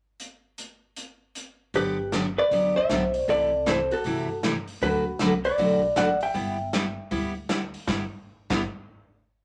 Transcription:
0.20 closed hi-hat
0.58 closed hi-hat
0.96 closed hi-hat
1.35 closed hi-hat
1.74 G1 D3 F#3 B3 D4 G4 B4, kick, open hi-hat
2.12 D3 F#3 B3 D4 G4, snare, closed hi-hat
2.38 B4 D5
2.51 A1 D3 F#3 B3 D4 G4, kick, open hi-hat
2.76 C5 E5
2.89 B1 D3 F#3 B3 D4 G4, snare, closed hi-hat
3.14 open hi-hat
3.19 D5
3.28 C2 C3 E3 A3 E4 G4 A4 D5, kick, open hi-hat
3.66 C3 E3 A3 E4 G4 A4 C5, snare, closed hi-hat
3.91 F#4 A4, open hi-hat
4.04 G2 C3 E3 A3 E4 G4, kick, open hi-hat
4.43 C3 E3 A3 E4 G4, snare, closed hi-hat
4.68 open hi-hat
4.82 D2 D3 F#3 A3 D4 F#4 B4, kick, open hi-hat
5.19 C2 D3 F#3 A3 D4 F#4 B4, snare, closed hi-hat
5.44 B4 D5, open hi-hat
5.58 B1 D3 F#3 A3 D4 F#4 B4, kick, open hi-hat
5.96 A1 D3 F#3 A3 D4 F#4 B4 D5 F#5, snare, closed hi-hat
6.21 E5 G5, open hi-hat
6.34 G1 G3 B3 E4 G4, kick, open hi-hat
6.73 G3 B3 E4 G4, snare, closed hi-hat
7.11 D2 G3 B3 E4 G4, kick, open hi-hat
7.49 G3 B3 E4 G4, snare, closed hi-hat
7.74 open hi-hat
7.87 G1 G3 B3 E4 G4, kick, snare
8.50 G1 G3 B3 E4 G4, kick, snare, crash

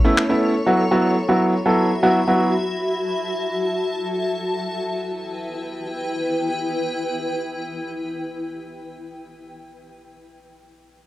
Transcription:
Already playing: A4 C#5 C#6
0.04 A3 B3 C#4 E4
0.17 finger snap
0.29 A3 B3 C#4 E4
0.66 F#3 B3 E4 F#4 E5 B5
0.91 F#3 B3 E4 F#4
1.28 F#3 B3 E4 F#4
1.66 F#3 B3 E4 A4
2.03 F#3 B3 E4 F#4
2.27 F#3 B3 E4 F#4
2.65 A5
4.63 E4 B4 G5

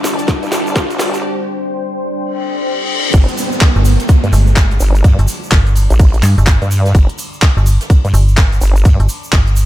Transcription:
Already playing: G1 G3 D4 G4 C5 D5 G5 A5, riser
0.04 snare, open hi-hat, shaker
0.19 closed hi-hat, shaker
0.28 kick, snare, closed hi-hat, shaker
0.43 G2, closed hi-hat, shaker
0.52 G1, snare, open hi-hat, shaker
0.67 shaker
0.76 kick, snare, closed hi-hat, shaker
0.90 closed hi-hat, shaker
0.99 G1, snare, open hi-hat, shaker
1.14 closed hi-hat, shaker
2.18 reverse cymbal
3.14 G1 G3 D4 D5 G5, kick, closed hi-hat, ride, crash, downlifter, shaker
3.28 closed hi-hat, shaker
3.37 open hi-hat, ride, shaker
3.52 shaker
3.61 kick, snare, clap, closed hi-hat, ride, shaker
3.76 G1, shaker
3.85 open hi-hat, ride, shaker
4.00 snare, closed hi-hat, shaker
4.09 kick, closed hi-hat, ride, shaker
4.24 G2, closed hi-hat, shaker
4.33 G1, open hi-hat, ride, shaker
4.47 shaker
4.56 kick, snare, clap, closed hi-hat, ride, shaker
4.71 closed hi-hat, shaker
4.80 G1, open hi-hat, ride, shaker
4.95 closed hi-hat, shaker
5.04 G2, kick, closed hi-hat, ride, shaker
5.19 G1, closed hi-hat, shaker
5.28 open hi-hat, ride, shaker
5.43 shaker
5.52 G1, kick, snare, clap, closed hi-hat, ride, shaker
5.67 closed hi-hat, shaker
5.75 open hi-hat, ride, shaker
5.90 A1, closed hi-hat, shaker
5.99 kick, closed hi-hat, open hi-hat, shaker
6.14 closed hi-hat, shaker
6.23 G2, clap, open hi-hat, ride, shaker
6.38 G1, closed hi-hat, shaker
6.46 kick, snare, clap, closed hi-hat, ride, shaker
6.62 G2, closed hi-hat, shaker
6.71 open hi-hat, ride, shaker
6.86 snare, closed hi-hat, shaker
6.95 G1 A5, kick, closed hi-hat, ride, shaker
7.09 closed hi-hat, shaker
7.18 open hi-hat, ride, shaker
7.33 shaker
7.42 kick, snare, clap, closed hi-hat, ride, shaker
7.57 G1, shaker
7.66 open hi-hat, ride, shaker
7.80 snare, closed hi-hat, shaker
7.90 kick, closed hi-hat, ride, shaker
8.05 G2, closed hi-hat, shaker
8.14 G1, open hi-hat, ride, shaker
8.28 shaker
8.37 kick, snare, clap, closed hi-hat, ride, shaker
8.52 closed hi-hat, shaker
8.61 G1, open hi-hat, ride, shaker
8.76 closed hi-hat, shaker
8.85 G2, kick, closed hi-hat, ride, shaker
9.00 G1, closed hi-hat, shaker
9.09 open hi-hat, ride, shaker
9.23 shaker
9.32 G1, kick, snare, clap, closed hi-hat, ride, shaker
9.47 closed hi-hat, shaker
9.56 open hi-hat, ride, shaker

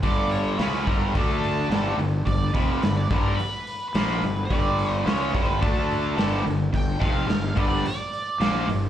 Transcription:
0.03 G1 G2 D3 G3 D5, kick, open hi-hat
0.31 C#5, open hi-hat
0.59 C#2 C#3 G#3 C#4 B4, snare, open hi-hat
0.86 G1 G2 D3 G3 A#4, kick, open hi-hat
1.15 D2 D3 A3 D4 A4, kick, open hi-hat
1.43 open hi-hat
1.70 G1 G2 D3 G3, snare, open hi-hat
1.98 G1 G2 D3, open hi-hat
2.26 G1 G2 D3 D5, kick, open hi-hat
2.54 F1 F2 C3 F3 B4, kick, open hi-hat
2.80 G1 G2 D3 B4, snare, open hi-hat
2.97 D5
3.10 G1 G2 D3 G3, kick, open hi-hat
3.16 A#4
3.34 B4
3.39 open hi-hat
3.67 open hi-hat
3.88 B4
3.94 A#1 A#2 F3 A#3, snare, open hi-hat
4.23 G1 G2 D3, open hi-hat
4.45 D5
4.50 G1 G2 D3 G3, kick, open hi-hat
4.79 open hi-hat
5.01 C#3 C#5
5.06 C#2 G#3 C#4, snare, open hi-hat
5.33 G1 G2 D3 G3, kick, open hi-hat
5.48 B4
5.61 D2 D3 A3 D4 A4, kick, open hi-hat
5.91 open hi-hat
6.16 G1 G2 D3 G3, snare, open hi-hat
6.44 G1 G2 D3, open hi-hat
6.73 G1 G2 D3 G5, kick, open hi-hat
6.99 F1 F2 C3 F3 F5, kick, open hi-hat
7.27 G1 G2 D3, snare, open hi-hat
7.55 G1 G2 D3 G3 D5, kick, open hi-hat
7.86 D5, open hi-hat
8.13 open hi-hat
8.40 A#1 A#2 F3 A#3, snare, open hi-hat
8.67 G1 G2 D3, open hi-hat

